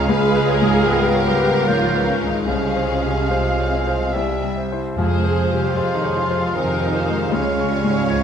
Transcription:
0.00 2.44 C#2 medium
0.00 0.10 G#2 medium
0.00 0.89 G#3 medium
0.00 0.10 D#5 soft
0.00 2.44 F5 medium
0.00 0.10 A#5 medium
0.06 2.45 C#2 medium
0.06 1.63 G#3 medium
0.06 1.25 G#3 medium
0.06 1.62 F4 medium
0.06 1.27 G#4 loud
0.06 0.47 B4 medium
0.06 1.69 F5 medium
0.06 0.88 G#5 medium
0.10 0.50 D#5 medium
0.36 0.77 B4 medium
0.48 2.49 A#4 medium
0.48 0.89 C#5 medium
0.62 1.04 G#2 medium
0.86 1.68 B3 medium
0.86 1.27 B4 medium
0.86 1.30 B4 medium
0.86 1.68 G5 medium
1.14 1.41 C#5 soft
1.27 1.68 G3 medium
1.27 1.66 G4 medium
1.27 1.68 B4 medium
1.42 1.84 B4 medium
1.66 2.11 G#2 soft
1.66 2.08 F3 medium
1.66 2.47 G#3 medium
1.66 2.20 A#3 medium
1.66 2.08 F4 medium
1.66 2.47 F4 medium
1.66 2.19 C#5 medium
1.66 2.19 F5 soft
1.66 2.20 G5 soft
1.96 2.38 B4 soft
2.08 2.27 C#3 medium
2.08 2.28 C#4 medium
2.22 2.49 G#3 soft
2.28 2.48 D#3 soft
2.28 2.48 D#4 medium
2.46 4.08 C2 medium
2.46 4.71 C2 soft
2.46 3.28 C#3 medium
2.46 4.16 G#3 soft
2.46 3.11 G#3 soft
2.46 3.29 C#4 medium
2.46 3.11 F4 soft
2.46 4.50 G#4 medium
2.46 3.18 C5 soft
2.46 4.15 F5 medium
2.46 4.14 F5 soft
2.46 4.10 F5 soft
2.76 3.19 C5 soft
3.03 3.47 C3 soft
3.28 4.55 C3 soft
3.28 4.10 G#3 soft
3.28 4.55 C4 soft
3.28 4.10 F4 soft
3.28 3.75 C5 soft
3.28 3.75 F5 medium
3.59 3.86 C#5 soft
3.73 4.16 D#5 medium
3.87 4.14 C5 soft
4.13 4.95 C2 soft
4.13 4.63 G3 soft
4.13 4.63 E4 soft
4.13 4.62 E5 soft
4.13 4.75 E5 soft
4.13 4.59 E5 medium
4.13 4.63 G5 soft
4.43 4.86 G3 soft
4.57 4.97 C5 soft
4.72 4.95 E4 soft
4.72 4.95 C5 soft
4.94 6.11 F2 medium
4.94 5.67 F2 soft
4.94 5.72 F3 soft
4.94 8.23 G#3 medium
4.94 5.52 G#3 medium
4.94 8.23 F4 medium
4.94 5.52 G#4 medium
4.94 5.72 C5 medium
4.94 5.72 F5 soft
4.94 5.72 G#5 soft
4.98 7.29 F2 medium
4.98 6.52 C5 soft
5.24 5.66 C5 soft
5.36 6.14 F5 soft
5.52 5.93 C3 soft
5.52 5.75 G3 soft
5.56 5.76 G4 medium
5.75 6.46 F2 soft
5.75 5.95 F3 medium
5.75 6.57 G#3 soft
5.75 5.95 F4 medium
5.75 6.55 G#4 soft
5.75 6.18 C5 soft
5.75 7.29 F5 soft
5.75 6.57 C6 soft
5.95 6.15 D#3 soft
5.95 6.15 D#4 medium
6.03 6.29 C#5 soft
6.15 6.55 F3 soft
6.15 6.55 F4 medium
6.15 6.93 F5 soft
6.31 6.71 C5 soft
6.55 7.23 F2 soft
6.55 6.97 C3 soft
6.55 7.30 D#3 soft
6.55 6.96 C4 soft
6.55 7.32 D#4 medium
6.55 6.93 A#4 soft
6.55 7.35 C5 soft
6.55 7.31 G#5 soft
6.82 7.22 C5 soft
6.94 7.35 A#3 soft
6.94 7.32 C5 soft
6.94 7.31 F5 soft
7.08 7.33 G#3 soft
7.32 8.23 C#2 medium
7.32 8.01 C#2 soft
7.32 8.23 C#3 medium
7.32 7.70 G#3 soft
7.32 8.23 C#4 medium
7.32 8.23 C#5 medium
7.32 8.11 C#5 soft
7.32 7.70 F5 soft
7.32 8.08 F5 soft
7.32 8.08 G#5 soft
7.59 8.00 C#5 soft
7.70 8.08 G3 soft
7.70 8.23 F5 soft
7.84 8.23 G#2 soft
8.09 8.23 C#2 soft
8.09 8.23 F3 soft
8.09 8.23 C#5 soft
8.09 8.23 D#5 soft
8.09 8.23 G#5 medium
8.09 8.23 G#5 soft

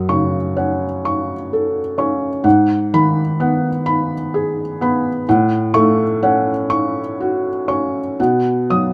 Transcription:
0.00 2.41 F#2 medium
0.00 0.37 F#5 soft
0.09 0.85 C#3 soft
0.09 0.85 C#6 medium
0.56 1.33 C#4 soft
0.56 1.33 F#5 soft
1.05 1.80 C#6 medium
1.53 2.27 A4 soft
1.98 2.45 C#4 soft
1.98 2.45 C#6 soft
2.44 5.21 G#2 medium
2.44 3.20 F#5 medium
2.94 3.68 D#3 soft
2.94 3.68 B5 medium
3.40 4.14 B3 soft
3.40 4.14 F#5 medium
3.86 4.60 B5 medium
4.34 5.08 G#4 soft
4.81 5.27 B3 medium
4.81 5.27 B5 medium
5.29 8.16 A2 medium
5.29 6.04 F#5 medium
5.74 6.51 A3 medium
5.74 6.50 C#6 medium
6.23 6.99 C#4 medium
6.23 6.99 F#5 medium
6.70 7.48 C#6 medium
7.21 7.99 F#4 soft
7.68 8.18 C#4 soft
7.68 8.19 C#6 medium
8.20 8.93 B2 medium
8.20 8.93 F#5 soft
8.70 8.93 F#3 soft
8.70 8.93 D#6 medium

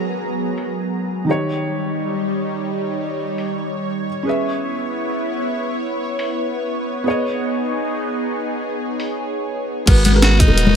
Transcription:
0.00 1.25 F#3 medium
0.00 1.24 G#3 medium
0.00 1.25 B3 medium
0.00 1.25 F#4 medium
0.00 1.25 G#4 medium
0.00 1.26 A#4 medium
0.00 1.27 B4 medium
0.00 1.25 A#5 medium
0.58 open hi-hat medium
1.25 4.05 D#3 medium
1.25 4.23 G3 medium
1.25 4.06 D#4 medium
1.25 4.23 D#4 medium
1.25 9.83 C#5 medium
1.29 4.07 G4 medium
1.29 4.08 C#5 medium
3.38 open hi-hat medium
4.23 9.83 B3 medium
4.23 7.03 C#4 medium
4.23 7.04 E4 medium
4.23 7.04 G#4 medium
4.27 7.05 B4 medium
4.27 7.06 E5 medium
6.19 open hi-hat medium
7.04 9.84 B3 medium
7.04 9.85 D#4 medium
7.04 9.85 G#4 medium
7.08 9.86 C#5 medium
7.08 9.87 D#5 medium
9.00 open hi-hat medium
9.86 10.48 G#1 loud
9.86 10.76 F#3 medium
9.86 10.11 G#3 medium
9.86 10.04 B3 loud
9.86 10.76 B3 medium
9.86 10.12 F#4 medium
9.86 10.76 A#4 medium
9.86 10.12 A#4 medium
9.86 10.13 B4 medium
9.86 kick loud
9.86 closed hi-hat medium
9.86 crash loud
10.05 10.13 B3 medium
10.05 closed hi-hat loud
10.05 high conga medium
10.13 10.26 G#3 medium
10.13 10.27 F#4 medium
10.13 10.27 A#4 medium
10.13 10.28 B4 medium
10.13 snare soft
10.22 10.41 F#4 loud
10.22 snare loud
10.22 closed hi-hat medium
10.40 10.76 D#4 loud
10.40 kick loud
10.40 closed hi-hat loud
10.48 10.76 D#1 loud
10.48 high bongo medium
10.58 closed hi-hat medium
10.67 high conga medium

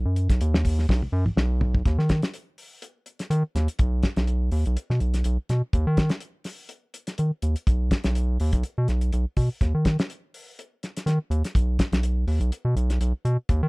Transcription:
0.05 0.28 F#2 medium
0.16 closed hi-hat medium
0.29 0.40 B1 loud
0.29 kick medium
0.29 snare soft
0.29 closed hi-hat medium
0.41 0.86 D#2 loud
0.41 closed hi-hat medium
0.54 snare medium
0.65 kick medium
0.65 open hi-hat medium
0.79 snare soft
0.89 1.01 B1 medium
0.89 kick medium
0.89 snare medium
1.02 1.08 B1 soft
1.02 high tom soft
1.12 1.25 F#2 loud
1.25 1.31 B1 soft
1.25 mid tom medium
1.37 1.83 B1 medium
1.37 snare medium
1.61 floor tom medium
1.75 kick medium
1.85 1.98 D#2 medium
1.85 kick medium
1.85 snare soft
1.85 closed hi-hat medium
1.98 2.22 D#3 medium
1.98 snare soft
2.09 kick medium
2.09 snare medium
2.09 closed hi-hat soft
2.23 snare medium
2.23 closed hi-hat soft
2.34 closed hi-hat medium
2.58 open hi-hat medium
2.82 closed hi-hat medium
3.06 closed hi-hat soft
3.19 snare soft
3.19 closed hi-hat medium
3.30 3.43 D#3 medium
3.30 closed hi-hat medium
3.55 3.68 D#2 medium
3.55 snare soft
3.55 closed hi-hat medium
3.68 closed hi-hat medium
3.79 4.02 B1 medium
3.79 kick medium
3.79 closed hi-hat medium
4.03 kick medium
4.03 snare medium
4.03 closed hi-hat soft
4.16 4.50 B1 medium
4.16 snare medium
4.16 closed hi-hat soft
4.27 closed hi-hat medium
4.52 4.65 D#2 loud
4.52 open hi-hat medium
4.66 4.77 B1 medium
4.66 closed hi-hat medium
4.77 closed hi-hat medium
4.90 5.00 B2 medium
4.90 snare soft
5.00 5.24 B1 medium
5.00 closed hi-hat soft
5.14 snare soft
5.14 closed hi-hat medium
5.24 5.38 B1 medium
5.24 closed hi-hat medium
5.49 5.62 B2 medium
5.49 snare soft
5.49 closed hi-hat soft
5.73 5.86 D#2 medium
5.73 kick medium
5.73 closed hi-hat medium
5.87 6.10 D#3 medium
5.97 kick medium
5.97 snare medium
5.97 closed hi-hat medium
6.09 snare medium
6.09 closed hi-hat soft
6.20 closed hi-hat medium
6.44 snare soft
6.44 open hi-hat medium
6.69 closed hi-hat medium
6.94 closed hi-hat medium
7.07 snare soft
7.07 closed hi-hat medium
7.18 7.31 D#3 medium
7.18 closed hi-hat medium
7.42 7.55 D#2 medium
7.42 closed hi-hat medium
7.56 closed hi-hat soft
7.67 7.90 B1 medium
7.67 kick medium
7.67 closed hi-hat medium
7.91 kick medium
7.91 snare medium
7.91 closed hi-hat medium
8.04 8.38 B1 medium
8.04 snare medium
8.04 closed hi-hat medium
8.15 closed hi-hat medium
8.40 8.52 D#2 medium
8.40 open hi-hat medium
8.53 8.63 B1 medium
8.53 kick medium
8.53 closed hi-hat medium
8.63 closed hi-hat medium
8.78 8.88 B2 medium
8.88 9.11 B1 medium
8.88 snare soft
8.88 closed hi-hat soft
9.01 closed hi-hat medium
9.13 9.25 B1 medium
9.13 closed hi-hat medium
9.37 9.49 B2 medium
9.37 kick medium
9.37 open hi-hat medium
9.61 9.73 D#2 loud
9.61 kick medium
9.61 snare soft
9.61 closed hi-hat medium
9.74 9.97 D#3 medium
9.85 kick medium
9.85 snare medium
9.85 closed hi-hat soft
9.99 snare medium
9.99 closed hi-hat soft
10.10 closed hi-hat medium
10.34 open hi-hat medium
10.59 closed hi-hat medium
10.83 snare soft
10.83 closed hi-hat soft
10.97 snare soft
10.97 closed hi-hat medium
11.06 11.19 D#3 medium
11.06 snare soft
11.06 closed hi-hat medium
11.30 11.43 D#2 medium
11.30 closed hi-hat soft
11.44 snare soft
11.44 closed hi-hat medium
11.55 11.78 B1 medium
11.55 kick medium
11.55 closed hi-hat medium
11.79 kick medium
11.79 snare medium
11.79 closed hi-hat medium
11.92 12.25 B1 medium
11.92 snare medium
11.92 closed hi-hat medium
12.03 closed hi-hat medium
12.27 12.39 D#2 medium
12.27 open hi-hat medium
12.40 12.51 B1 medium
12.40 closed hi-hat medium
12.52 closed hi-hat medium
12.65 12.75 B2 medium
12.76 12.99 B1 medium
12.76 closed hi-hat medium
12.90 snare soft
12.90 closed hi-hat medium
13.00 13.13 B1 medium
13.00 closed hi-hat medium
13.25 13.37 B2 medium
13.25 closed hi-hat soft
13.49 13.62 D#2 loud
13.49 kick medium
13.49 closed hi-hat medium
13.63 13.69 D#3 medium

